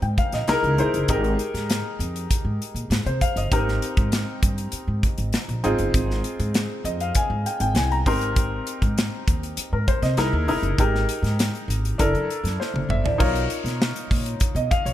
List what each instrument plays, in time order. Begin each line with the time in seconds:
Already playing: grand piano C4 D#4 G4 A#4 G5
0.02 upright bass G#2, grand piano G5, closed hi-hat
0.18 grand piano F5, kick, closed hi-hat
0.32 upright bass A#1, grand piano D#5, snare, closed hi-hat
0.48 upright bass C2, grand piano D#4 E4 G#4 A#4, snare, closed hi-hat
0.63 upright bass C#2, closed hi-hat
0.78 upright bass E1, grand piano D#4 E4 G#4 C5, closed hi-hat
0.94 upright bass F#1, closed hi-hat
1.08 upright bass G#1, grand piano D#4 G4 G#4 A#4, kick, closed hi-hat
1.24 closed hi-hat
1.39 closed hi-hat
1.54 upright bass G#2, snare, closed hi-hat
1.70 snare, closed hi-hat
1.99 upright bass F2, closed hi-hat
2.16 closed hi-hat
2.30 muted upright bass stroke, kick, closed hi-hat
2.45 upright bass G#2
2.62 closed hi-hat
2.74 upright bass A#2, closed hi-hat
2.90 upright bass G#2, snare, closed hi-hat
3.06 upright bass C3, grand piano C5, closed hi-hat
3.21 grand piano F5, kick, closed hi-hat
3.36 upright bass G1, grand piano D#5, closed hi-hat
3.52 upright bass G#1, grand piano C4 D#4 G4 A#4, kick, closed hi-hat
3.68 snare
3.82 closed hi-hat
3.97 upright bass G#2, kick, closed hi-hat
4.12 snare, closed hi-hat
4.43 upright bass G2, kick, closed hi-hat
4.58 closed hi-hat
4.72 muted upright bass stroke, closed hi-hat
4.88 upright bass G#2
5.03 kick, closed hi-hat
5.18 upright bass G#1, closed hi-hat
5.33 snare, closed hi-hat
5.48 upright bass A#1, closed hi-hat
5.64 upright bass G#1, grand piano C4 D#4 F4 G#4, closed hi-hat
5.79 upright bass G1, closed hi-hat
5.94 upright bass G#1, kick, closed hi-hat
6.11 snare
6.24 closed hi-hat
6.39 upright bass G#2, closed hi-hat
6.54 snare, closed hi-hat
6.84 upright bass F2, grand piano D#5, closed hi-hat
7.00 grand piano F5, closed hi-hat
7.15 grand piano G#5, kick, closed hi-hat
7.30 upright bass G#2
7.46 grand piano G5, closed hi-hat
7.60 upright bass G#1, grand piano G5, closed hi-hat
7.75 upright bass C2, grand piano G#5, snare, closed hi-hat
7.92 grand piano A#5, closed hi-hat
8.06 upright bass G#1, grand piano C4 D#4 G4 A#4 C6, kick, open hi-hat
8.21 closed hi-hat
8.36 kick, closed hi-hat
8.67 closed hi-hat
8.82 upright bass G#2, kick, closed hi-hat
8.98 snare, closed hi-hat
9.28 upright bass D#2, kick, closed hi-hat
9.43 closed hi-hat
9.57 muted upright bass stroke, closed hi-hat
9.73 upright bass G#2, grand piano A#4
9.88 grand piano C5, kick, closed hi-hat
10.02 upright bass C3, grand piano D#5, snare, closed hi-hat
10.17 upright bass C2, grand piano D#4 E4 G#4 A#4, snare, closed hi-hat
10.33 upright bass D#2
10.47 upright bass E1, grand piano D#4 E4 G#4 A#4, open hi-hat
10.63 upright bass F#1, closed hi-hat
10.78 upright bass G#1, grand piano D#4 G4 G#4 A#4, kick, closed hi-hat
10.95 snare
11.09 closed hi-hat
11.23 upright bass G#2, snare, closed hi-hat
11.39 snare, closed hi-hat
11.55 closed hi-hat
11.68 upright bass G#1, closed hi-hat
11.85 closed hi-hat
11.98 upright bass F#1, grand piano D4 E4 A4 A#4, kick, closed hi-hat
12.14 upright bass F#2, closed hi-hat
12.30 closed hi-hat
12.44 upright bass F#2, snare, closed hi-hat
12.60 grand piano C5, snare
12.74 upright bass F#1, high tom
12.89 upright bass G1, grand piano E5, mid tom
13.04 upright bass A1, grand piano D5, floor tom
13.18 upright bass B1, grand piano D#4 F4 A#4 C#5, kick, crash
13.35 closed hi-hat
13.50 closed hi-hat
13.64 upright bass B2, snare, closed hi-hat
13.82 snare
13.96 closed hi-hat
14.11 upright bass A#2, kick, open hi-hat
14.26 closed hi-hat
14.40 muted upright bass stroke, kick, closed hi-hat
14.55 upright bass B2, grand piano D#5, closed hi-hat
14.71 grand piano F5, kick, closed hi-hat
14.85 upright bass B1, grand piano C#5, closed hi-hat